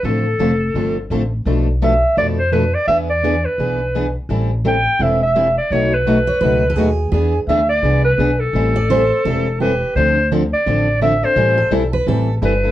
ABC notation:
X:1
M:4/4
L:1/16
Q:"Swing" 1/4=169
K:Am
V:1 name="Clarinet"
A12 z4 | z4 e4 d2 c2 B2 d2 | e2 d4 B8 z2 | z4 g4 e2 e4 d2 |
^c2 B12 z2 | z4 e2 d4 B4 A2- | A12 B4 | c4 z2 d6 e2 c2- |
c4 z8 B4 |]
V:2 name="Steel-string acoustic guitar"
z16 | z16 | z16 | z16 |
z6 ^c2 B3 A ^G4 | ^G3 z12 z | z2 d2 c4 A4 G4 | z16 |
z2 A4 B2 A3 z4 z |]
V:3 name="Steel-string acoustic guitar"
[D,A,CFA]2 z2 [D,A,CFA] z3 [D,A,CFA]2 z2 [D,A,CFA] z3 | [B,,F,A,DA]2 z2 [B,,F,A,DA] z3 [B,,F,A,DA]2 z2 [B,,F,A,DA] z3 | [E,B,D^G]2 z2 [E,B,DG] z3 [E,B,DG]2 z2 [E,B,DG] z3 | [E,G,CEA]2 z2 [E,G,CEA] z3 [E,G,CEA]2 z2 [E,G,CEA] z3 |
[B,,^F,A,^D^F]2 z2 [B,,F,A,DF] z3 [B,,F,A,DF]2 z2 [B,,F,A,DF] z3 | [E,B,D^G]2 z2 [E,B,DG] z3 [E,B,DG]2 z2 [E,B,DG] z3 | [E,G,CEA]2 z2 [E,G,CEA] z3 [E,G,CEA]2 z2 [E,G,CEA] z3 | [D,F,CDA]2 z2 [D,F,CDA] z3 [D,F,CDA]2 z2 [D,F,CDA] z [CDA]2 |
[E,G,CEA]2 z2 [E,G,CEA] z3 [E,G,CEA]2 z2 [E,G,CEA] z [CEA]2 |]
V:4 name="Steel-string acoustic guitar"
[C,F,CDA]2 z2 [C,F,CDA] z3 [C,F,CDA]2 z2 [C,F,CDA] z3 | [B,,F,A,DAB]2 z2 [B,,F,A,DAB] z3 [B,,F,A,DAB]2 z2 [B,,F,A,DAB] z3 | [E,B,D^GB]2 z2 [E,B,DGB] z3 [E,B,DGB]2 z2 [E,B,DGB] z3 | [E,G,CEA]2 z2 [E,G,CEA] z3 [E,G,CEA]2 z2 [E,G,CEA] z3 |
[B,,^F,A,^D^FB]2 z2 [B,,F,A,DFB] z3 [B,,F,A,DFB]2 z2 [B,,F,A,DFB] z3 | [E,B,D^GB]2 z2 [E,B,DGB] z3 [E,B,DGB]2 z2 [E,B,DGB] z3 | [E,G,CEA]2 z2 [E,G,CEA] z3 [E,G,CEA]2 z2 [E,G,CEA] z3 | [D,F,CDA]2 z2 [D,F,CDA] z3 [D,F,CDA]2 z2 [D,F,CDA] z3 |
[E,G,CEA]2 z2 [E,G,CEA] z3 [E,G,CEA]2 z2 [E,G,CEA] z3 |]
V:5 name="Upright bass" clef=bass
A,,,4 F,,,4 G,,,4 A,,,4 | B,,,8 F,,8 | E,,8 B,,,8 | A,,,8 E,,,8 |
B,,,8 ^C,,4 ^D,,4 | E,,4 D,,4 C,,4 B,,,4 | A,,,8 E,,,8 | D,,8 A,,,8 |
A,,,4 B,,,4 A,,,4 G,,,4 |]